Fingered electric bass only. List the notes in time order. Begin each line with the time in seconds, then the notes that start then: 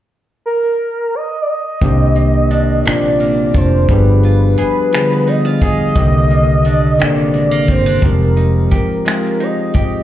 1.82 C2
2.87 A#1
3.55 F1
3.90 G1
4.60 muted fingered electric bass stroke
5.96 C2
7.01 A#1
7.69 G1
8.03 F1
8.73 muted fingered electric bass stroke